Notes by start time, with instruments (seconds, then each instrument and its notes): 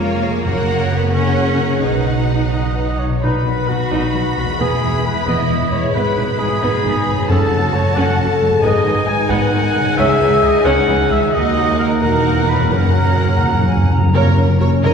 Already playing: double bass section F1, harp F2 F3 A#3 C#4, cello section A#3
0.00 violin section F4 C#5 F5, viola section A#4, harp A#4
0.23 harp F3, viola section G#4, violin section A#4 C#5 F5
0.45 double bass section F#1, timpani F#2, harp F#2, cello section A#3, viola section F#4, violin section A#4 C#5 F#5
0.68 harp A#3
0.90 cello section B3, harp F#4
1.13 harp C#3, cello section C#4, violin section A#4 C#5 F#5
1.36 harp F#4
1.59 harp C#3
1.82 double bass section B1, harp B2, cello section D#4, viola section F#4, violin section B4 F#5
2.06 harp B3
2.29 harp F#4
2.52 harp F#3, cor anglais D#5, clarinet D#5, trumpet D#5
2.75 harp F#4
2.99 harp F#3, trumpet C#5, cor anglais C#5, clarinet C#5
3.05 harp B2
3.09 harp B3
3.14 harp D#4
3.18 harp B4, violin section B5
3.22 double bass section B1, cello section B2, french horn section D#3 B4, viola section D#4, violin section F#4, trumpet B4, clarinet B4, cor anglais B4
3.45 double bass section B1, cello section B2, viola section F#3
3.67 double bass section B1, cello section B2, viola section B3, clarinet F#4, trumpet F#4, cor anglais F#4
3.90 double bass section B1, cello section B2, viola section D#4
4.14 double bass section B1, cello section B2, viola section F#3
4.37 double bass section B1, cello section B2, viola section B3
4.42 harp E2
4.46 harp B3
4.51 harp E4
4.55 viola section B3, harp B4
4.59 double bass section E1, cello section E2, french horn section E3 B4, violin section E4, trumpet G#4, clarinet G#4, cor anglais G#4
4.82 double bass section E1, cello section E2, viola section E3
5.05 double bass section E1, cello section E2, viola section G#3, trumpet B4, clarinet B4, cor anglais B4
5.26 double bass section E1, cello section E2, viola section B3, trumpet D#5, clarinet D#5, cor anglais D#5
5.49 double bass section E1, cello section E2, viola section E3
5.71 double bass section E1, cello section E2, viola section G#3, clarinet C#5, trumpet C#5, cor anglais C#5
5.76 harp G#2
5.81 harp B3
5.90 harp B4, violin section B5
5.94 double bass section G#1, cello section G#2, french horn section B2 B4, viola section B3, trumpet B4, clarinet B4, cor anglais B4
6.17 double bass section G#1, cello section G#2, viola section D#3
6.38 double bass section G#1, cello section G#2, viola section G#3, clarinet G#4, cor anglais G#4, trumpet G#4
6.61 double bass section G#1, cello section G#2, viola section B3, violin section D#4
6.84 double bass section G#1, cello section G#2, viola section D#3
7.07 double bass section G#1, cello section G#2, viola section G#3
7.12 harp F#2
7.16 harp C#4
7.20 harp F#4
7.25 violin section F#4, harp A4, cor anglais A4
7.29 double bass section F#1, timpani F#2, cello section F#2, french horn section C#3 A4, viola section C#4, trumpet A4, clarinet A4, violin section A5
7.51 double bass section F#1, cello section F#2, viola section F#3
7.74 double bass section F#1, cello section F#2, viola section A3, cor anglais C#5, trumpet C#5, clarinet C#5
7.95 double bass section F#1, cello section F#2, french horn section C#3 A4, viola section C#4, cor anglais F#5, trumpet F#5, clarinet F#5
8.18 double bass section F#1, cello section F#2, viola section F#3
8.41 double bass section F#1, cello section F#2, viola section A3
8.45 harp G#2
8.50 harp B3
8.59 cello section G#2, french horn section D#3 B4, viola section B3, harp G#4, cor anglais D#5, violin section G#5
8.63 double bass section G#1, violin section D#4, clarinet D#5, trumpet D#5
8.85 double bass section G#1, cello section G#2, viola section D#3
9.07 double bass section G#1, cello section G#2, viola section G#3, trumpet G#5, clarinet G#5, cor anglais G#5
9.29 double bass section G#1, cello section G#2, viola section B3, clarinet F#5, cor anglais F#5, trumpet F#5
9.51 double bass section G#1, cello section G#2, viola section D#3, french horn section A#4
9.74 double bass section G#1, cello section G#2, viola section G#3
9.79 harp C#3
9.84 harp C#4
9.92 double bass section C#2, french horn section D#3 G#4, harp G#4
9.97 cello section C#2, viola section C#4, cor anglais E5, clarinet E5, trumpet E5
10.19 double bass section C#2, cello section C#2, viola section E3
10.42 double bass section C#2, cello section C#2, viola section G#3, trumpet D#5, clarinet D#5, cor anglais D#5
10.64 cello section C#2, double bass section C#2, viola section C#4, trumpet F#5, clarinet F#5, cor anglais F#5
10.87 double bass section C#2, cello section C#2, viola section E3
11.10 double bass section C#2, cello section C#2, viola section G#3, trumpet E5, clarinet E5, cor anglais E5
11.15 harp D#3
11.19 harp A#3
11.24 harp D#4
11.28 harp F#4, violin section F#5
11.32 double bass section D#2, cello section D#2, french horn section D#3 F#4, viola section A#3, violin section D#4, trumpet D#5, cor anglais D#5, clarinet D#5
11.79 clarinet A#4, trumpet A#4, cor anglais A#4
12.01 double bass section E1, cello section E2, french horn section D#3 F#4, viola section A#3, violin section D#4 F#5, clarinet A#4, trumpet A#4, cor anglais A#4
12.48 clarinet B4, trumpet B4, cor anglais B4
12.54 harp F#2
12.58 harp F#3
12.62 harp C#4
12.67 viola section F#3, harp F#4
12.71 double bass section F#1, cello section F#2, timpani F#2, french horn section C#3 F#4, violin section C#4 F#5, trumpet A#4, clarinet A#4, cor anglais A#4
12.80 timpani F#2
12.88 timpani F#2
12.96 timpani F#2
13.04 timpani F#2
13.12 timpani F#2
13.20 timpani F#2
13.28 timpani F#2
13.36 timpani F#2
13.43 timpani F#2, flute F#5
13.52 timpani F#2
13.60 timpani F#2
13.66 timpani F#2, flute G#5
13.75 timpani F#2
13.83 timpani F#2
13.90 timpani F#2, flute A#5
13.98 timpani F#2
14.06 timpani F#2
14.14 double bass section F#1, harp F#2, cello section F#2, french horn section A#3, viola section A#4 C#5, violin section A#4
14.37 double bass section F#1, cello section F#2, harp A#3, viola section C#4 F#4
14.60 double bass section F#1, cello section F#2, harp C#4, french horn section C#4, viola section F#4 A#4, violin section C#5
14.83 double bass section F#1, cello section F#2, harp C#3, french horn section D#4, violin section F#4 D#5, viola section A#4 C#5